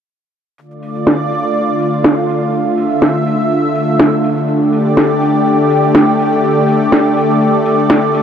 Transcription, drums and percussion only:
0.58 closed hi-hat, shaker
0.71 closed hi-hat, shaker
0.83 open hi-hat
0.95 closed hi-hat, shaker
1.07 snare, closed hi-hat, shaker
1.20 closed hi-hat, shaker
1.31 open hi-hat
1.44 closed hi-hat, shaker
1.56 closed hi-hat, shaker
1.69 shaker
1.80 open hi-hat
1.93 closed hi-hat, shaker
2.04 snare, closed hi-hat, shaker
2.17 closed hi-hat, shaker
2.29 open hi-hat
2.42 closed hi-hat, shaker
2.53 closed hi-hat, shaker
2.66 closed hi-hat, shaker
2.78 open hi-hat
2.90 closed hi-hat, shaker
3.02 snare, closed hi-hat, shaker
3.15 closed hi-hat, shaker
3.26 open hi-hat
3.39 closed hi-hat, shaker
3.51 closed hi-hat, shaker
3.64 closed hi-hat, shaker
3.75 open hi-hat
3.88 closed hi-hat, shaker
3.99 snare, closed hi-hat, shaker
4.12 closed hi-hat, shaker
4.24 open hi-hat
4.37 closed hi-hat, shaker
4.49 closed hi-hat, shaker
4.61 closed hi-hat, shaker
4.73 open hi-hat
4.86 closed hi-hat, shaker
4.97 snare, closed hi-hat, shaker
5.10 closed hi-hat, shaker
5.22 open hi-hat
5.35 closed hi-hat, shaker
5.46 closed hi-hat, shaker
5.60 shaker
5.70 open hi-hat
5.83 closed hi-hat, shaker
5.95 snare, closed hi-hat, shaker
6.08 closed hi-hat, shaker
6.19 open hi-hat
6.32 closed hi-hat, shaker
6.44 closed hi-hat, shaker
6.56 closed hi-hat, shaker
6.68 open hi-hat
6.81 closed hi-hat, shaker
6.92 snare, closed hi-hat, shaker
7.05 closed hi-hat, shaker
7.17 open hi-hat
7.30 closed hi-hat, shaker
7.41 closed hi-hat, shaker
7.54 closed hi-hat, shaker
7.66 open hi-hat
7.78 closed hi-hat, shaker
7.90 snare, closed hi-hat, shaker
8.03 closed hi-hat, shaker
8.14 open hi-hat

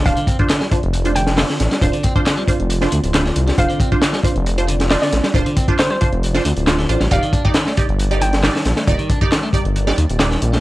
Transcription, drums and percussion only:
0.06 kick, closed hi-hat
0.17 closed hi-hat
0.27 kick, closed hi-hat
0.39 kick, closed hi-hat
0.49 snare, clap, closed hi-hat
0.61 snare, closed hi-hat
0.71 kick, closed hi-hat
0.83 closed hi-hat
0.93 closed hi-hat
1.05 closed hi-hat
1.16 closed hi-hat
1.27 snare, closed hi-hat
1.38 snare, clap, closed hi-hat, open hi-hat
1.49 snare, closed hi-hat
1.60 snare, closed hi-hat
1.71 snare, closed hi-hat
1.82 kick, closed hi-hat
1.93 closed hi-hat
2.03 kick, closed hi-hat
2.16 kick, closed hi-hat
2.26 snare, clap, closed hi-hat
2.38 closed hi-hat
2.48 kick, closed hi-hat
2.60 closed hi-hat
2.70 closed hi-hat
2.81 snare, closed hi-hat
2.92 closed hi-hat
3.04 closed hi-hat
3.14 snare, clap, closed hi-hat
3.26 snare, closed hi-hat
3.36 closed hi-hat
3.47 snare, closed hi-hat
3.58 kick, closed hi-hat
3.70 closed hi-hat
3.80 kick, closed hi-hat
3.92 kick, closed hi-hat
4.02 snare, clap, closed hi-hat
4.13 snare, closed hi-hat
4.24 kick, closed hi-hat
4.36 closed hi-hat
4.46 closed hi-hat
4.58 closed hi-hat
4.69 closed hi-hat
4.80 snare, closed hi-hat
4.90 snare, clap, closed hi-hat, open hi-hat
5.02 snare, closed hi-hat
5.13 snare, closed hi-hat
5.24 snare, closed hi-hat
5.34 kick, closed hi-hat
5.46 closed hi-hat
5.57 kick, closed hi-hat
5.68 kick, closed hi-hat
5.79 snare, clap, closed hi-hat
5.90 closed hi-hat
6.01 kick, closed hi-hat
6.13 closed hi-hat
6.23 closed hi-hat
6.34 snare, closed hi-hat
6.45 closed hi-hat
6.57 closed hi-hat
6.67 snare, clap, closed hi-hat
6.79 snare, closed hi-hat
6.89 closed hi-hat
7.00 snare, closed hi-hat
7.11 kick, closed hi-hat
7.23 closed hi-hat
7.33 kick, closed hi-hat
7.45 kick, closed hi-hat
7.54 snare, clap, closed hi-hat
7.55 closed hi-hat
7.67 snare, closed hi-hat
7.77 kick, closed hi-hat
7.89 closed hi-hat
7.99 closed hi-hat
8.11 closed hi-hat
8.22 closed hi-hat
8.33 snare, closed hi-hat
8.43 snare, clap, closed hi-hat, open hi-hat
8.55 snare, closed hi-hat
8.65 snare, closed hi-hat
8.76 snare, closed hi-hat
8.87 kick, closed hi-hat
8.99 closed hi-hat
9.10 kick, closed hi-hat
9.21 kick, closed hi-hat
9.32 snare, clap, closed hi-hat
9.43 closed hi-hat
9.53 kick, closed hi-hat
9.65 closed hi-hat
9.76 closed hi-hat
9.87 snare, closed hi-hat
9.98 closed hi-hat
10.10 closed hi-hat
10.19 snare, clap, closed hi-hat
10.31 snare, closed hi-hat
10.42 closed hi-hat
10.53 snare, closed hi-hat

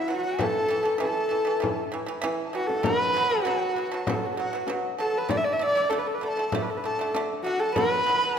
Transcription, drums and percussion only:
0.39 frame drum
0.86 frame drum
1.02 frame drum
1.32 frame drum
1.63 frame drum
1.93 frame drum
2.23 frame drum
2.69 frame drum
2.84 frame drum
3.30 frame drum
3.46 frame drum
3.75 frame drum
4.07 frame drum
4.37 frame drum
4.67 frame drum
5.29 frame drum
5.76 frame drum
5.91 frame drum
6.22 frame drum
6.52 frame drum
6.84 frame drum
7.14 frame drum
7.76 frame drum

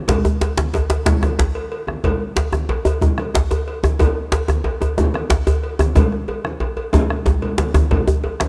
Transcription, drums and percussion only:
0.08 bombo low, cowbell, djembe slap, high conga, djembe bass, low conga
0.25 high conga, djembe tone
0.41 cowbell, djembe slap, high conga, djembe tone
0.58 bombo rim, djembe slap, high conga
0.74 bombo rim, cowbell, djembe slap, djembe tone, djembe bass
0.90 cowbell, djembe slap, high conga, djembe tone
1.06 bombo rim, bombo low, djembe slap, low conga
1.22 bombo rim, cowbell, djembe slap, high conga, djembe tone
1.39 bombo rim, djembe slap, djembe tone, djembe bass
1.55 cowbell
1.72 cowbell
1.87 bombo rim, djembe tone, high conga
2.04 bombo low, cowbell, djembe slap, high conga, djembe bass, low conga
2.22 high conga
2.36 cowbell, djembe slap, djembe tone, high conga
2.53 bombo rim, djembe slap, djembe tone, high conga
2.69 bombo rim, cowbell, djembe slap, high conga, djembe bass
2.85 cowbell, djembe tone, high conga
3.01 bombo rim, bombo low, djembe slap, djembe tone, low conga
3.18 bombo rim, cowbell, djembe slap, high conga
3.34 bombo rim, djembe slap, djembe tone, djembe bass
3.51 cowbell, djembe tone
3.68 cowbell
3.83 bombo rim, djembe tone, high conga
3.99 bombo low, cowbell, djembe slap, high conga, djembe tone, djembe bass, low conga
4.32 cowbell, djembe slap, djembe tone, high conga
4.48 bombo rim, djembe slap, djembe tone, high conga
4.64 bombo rim, cowbell, djembe slap, high conga, djembe bass
4.81 cowbell, djembe tone, high conga
4.97 bombo rim, bombo low, djembe slap, djembe tone, low conga
5.13 bombo rim, cowbell, djembe slap, high conga
5.30 bombo rim, djembe slap, djembe tone, djembe bass
5.47 cowbell, djembe tone
5.64 cowbell
5.79 bombo rim, djembe tone, high conga
5.95 bombo rim, bombo low, cowbell, djembe slap, high conga, djembe tone, low conga, djembe bass
6.12 bombo rim, high conga
6.28 cowbell, high conga, djembe tone
6.45 bombo rim, high conga
6.60 cowbell, djembe slap, high conga, djembe bass
6.77 bombo rim, cowbell, djembe tone
6.93 bombo rim, bombo low, djembe tone, low conga
7.10 bombo rim, cowbell, low conga
7.26 bombo rim, djembe slap, djembe tone, djembe bass, low conga
7.42 cowbell, djembe slap, low conga
7.58 cowbell, djembe slap, high conga
7.74 bombo rim, djembe tone, high conga
7.91 bombo low, cowbell, djembe slap, high conga, djembe bass, low conga
8.08 djembe tone, high conga
8.24 cowbell, djembe tone, high conga
8.40 bombo rim, djembe slap, high conga

